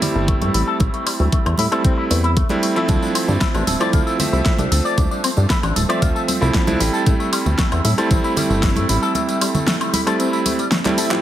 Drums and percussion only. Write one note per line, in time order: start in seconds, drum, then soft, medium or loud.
0.02 open hi-hat loud
0.02 high conga medium
0.02 low conga medium
0.28 kick loud
0.28 closed hi-hat medium
0.42 closed hi-hat soft
0.42 high conga medium
0.54 open hi-hat medium
0.80 kick loud
0.80 closed hi-hat medium
0.80 high conga medium
0.94 closed hi-hat soft
1.07 open hi-hat loud
1.07 high woodblock medium
1.20 high conga medium
1.32 kick loud
1.32 closed hi-hat medium
1.46 closed hi-hat soft
1.46 high woodblock medium
1.58 open hi-hat medium
1.58 high conga medium
1.72 closed hi-hat soft
1.72 high woodblock medium
1.85 kick loud
1.85 closed hi-hat medium
2.11 open hi-hat loud
2.11 high conga medium
2.24 closed hi-hat soft
2.37 kick loud
2.37 closed hi-hat medium
2.49 closed hi-hat soft
2.49 high conga medium
2.63 open hi-hat medium
2.76 closed hi-hat soft
2.88 kick loud
2.88 closed hi-hat medium
2.88 tambourine soft
2.88 high conga medium
3.03 tambourine soft
3.15 open hi-hat loud
3.15 tambourine medium
3.15 high woodblock medium
3.28 tambourine soft
3.28 high conga medium
3.28 low conga medium
3.41 kick loud
3.41 snare loud
3.41 closed hi-hat medium
3.41 tambourine soft
3.55 closed hi-hat soft
3.55 tambourine soft
3.55 high woodblock medium
3.67 open hi-hat medium
3.67 tambourine medium
3.67 high conga medium
3.81 closed hi-hat soft
3.81 tambourine soft
3.81 high woodblock medium
3.93 kick loud
3.93 closed hi-hat medium
3.93 tambourine soft
4.07 tambourine soft
4.19 open hi-hat loud
4.19 tambourine medium
4.19 high conga medium
4.19 low conga medium
4.33 tambourine soft
4.45 kick loud
4.45 snare loud
4.45 closed hi-hat medium
4.45 tambourine soft
4.58 closed hi-hat soft
4.58 tambourine soft
4.58 high conga medium
4.72 open hi-hat medium
4.72 tambourine medium
4.85 tambourine soft
4.98 kick loud
4.98 closed hi-hat medium
4.98 tambourine soft
4.98 high conga medium
5.11 tambourine soft
5.24 open hi-hat loud
5.24 tambourine medium
5.24 high woodblock medium
5.37 tambourine soft
5.37 high conga medium
5.50 kick loud
5.50 snare loud
5.50 closed hi-hat medium
5.50 tambourine soft
5.63 closed hi-hat soft
5.63 tambourine soft
5.63 high woodblock medium
5.76 open hi-hat medium
5.76 tambourine medium
5.76 high conga medium
5.90 closed hi-hat soft
5.90 tambourine soft
5.90 high woodblock medium
6.02 kick loud
6.02 closed hi-hat medium
6.02 tambourine soft
6.16 tambourine soft
6.28 open hi-hat loud
6.28 tambourine medium
6.28 high conga medium
6.42 tambourine soft
6.54 kick loud
6.54 snare loud
6.54 closed hi-hat medium
6.54 tambourine soft
6.67 closed hi-hat medium
6.67 tambourine soft
6.67 high conga medium
6.80 open hi-hat medium
6.80 tambourine medium
6.94 tambourine soft
7.06 kick loud
7.06 closed hi-hat medium
7.06 tambourine soft
7.06 high conga medium
7.20 tambourine soft
7.33 open hi-hat medium
7.33 tambourine medium
7.33 high woodblock medium
7.46 tambourine soft
7.46 high conga medium
7.46 low conga medium
7.58 kick loud
7.58 snare loud
7.58 closed hi-hat medium
7.58 tambourine soft
7.72 closed hi-hat soft
7.72 tambourine soft
7.72 high woodblock medium
7.85 open hi-hat medium
7.85 tambourine medium
7.85 high conga medium
7.98 closed hi-hat medium
7.98 tambourine soft
7.98 high woodblock medium
8.11 kick loud
8.11 closed hi-hat medium
8.11 tambourine soft
8.24 tambourine soft
8.37 open hi-hat medium
8.37 tambourine medium
8.37 high conga medium
8.37 low conga medium
8.50 tambourine soft
8.63 kick loud
8.63 snare loud
8.63 closed hi-hat medium
8.63 tambourine soft
8.76 closed hi-hat soft
8.76 tambourine soft
8.76 high conga medium
8.89 open hi-hat medium
8.89 tambourine medium
9.03 tambourine soft
9.15 closed hi-hat medium
9.15 tambourine soft
9.15 high conga medium
9.29 closed hi-hat soft
9.29 tambourine soft
9.41 open hi-hat loud
9.41 tambourine medium
9.41 high woodblock medium
9.55 closed hi-hat soft
9.55 tambourine soft
9.55 high conga medium
9.55 low conga medium
9.67 snare loud
9.67 closed hi-hat medium
9.67 tambourine soft
9.81 closed hi-hat soft
9.81 tambourine soft
9.81 high woodblock medium
9.93 open hi-hat medium
9.93 tambourine medium
9.93 high conga medium
10.07 closed hi-hat medium
10.07 tambourine soft
10.07 high woodblock medium
10.20 closed hi-hat medium
10.20 tambourine soft
10.33 tambourine soft
10.46 open hi-hat loud
10.46 tambourine medium
10.46 high conga medium
10.59 closed hi-hat soft
10.59 tambourine soft
10.71 snare loud
10.71 closed hi-hat medium
10.71 tambourine soft
10.85 clap medium
10.85 closed hi-hat medium
10.85 tambourine soft
10.85 high conga medium
10.98 open hi-hat medium
10.98 tambourine medium
11.11 clap loud
11.11 closed hi-hat soft
11.11 tambourine soft